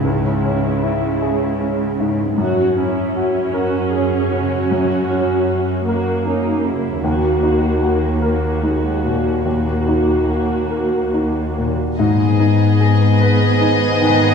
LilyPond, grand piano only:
\new Staff \with { instrumentName = "Grand piano" } { \time 6/8 \key gis \minor \tempo 4. = 51 <cis, gis,>8 cis'8 e'8 gis'8 cis'8 gis,8 | fis,8 cis'8 fis'8 ais'8 cis'8 cis8 | fis,8 cis'8 fis'8 ais'8 cis'8 cis8 | dis,8 dis'8 fis'8 ais'8 dis'8 ais,8 |
dis,8 dis'8 fis'8 ais'8 dis'8 ais,8 | gis,8 dis'8 gis'8 b'8 dis'8 dis8 | }